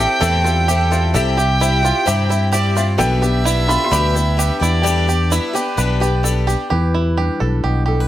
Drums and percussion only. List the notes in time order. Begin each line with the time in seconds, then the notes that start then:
0.00 shaker
0.23 shaker
0.46 shaker
0.69 shaker
0.92 shaker
1.15 shaker
1.39 shaker
1.62 shaker
1.85 shaker
2.08 shaker
2.31 shaker
2.53 shaker
2.77 shaker
3.00 shaker
3.23 shaker
3.47 shaker
3.70 shaker
3.93 shaker
4.16 shaker
4.40 shaker
4.63 shaker
4.86 shaker
5.09 shaker
5.32 shaker
5.56 shaker
5.78 shaker
6.03 shaker
6.25 shaker
6.49 shaker